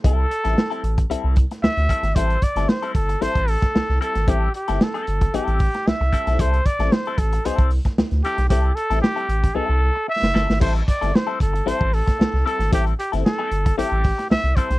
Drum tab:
CC |----------------|----------------|----------------|----------------|
HH |x-xx-xxxx-xx-xxx|xxxx-xxxxxox--xx|x-xx-xxxxxox--xx|xxxx-xxxxxox-xxx|
SD |---oo------ooo-o|---oo------ooo-o|---oo------ooo-o|---oo------ooo-o|
BD |o------o--o---o-|o-o---o--o-o----|o------o--o---o-|o-o---o--o-o----|

CC |----------------|x---------------|----------------|
HH |x-xx-xxx--------|-xxx--xxx-ox--xx|xxxx--xxx-ox-xxx|
SD |---oo--------ooo|---oo------ooo-o|---oo------ooo-o|
BD |o------o--------|o-o---o--o-o----|o------o--o---o-|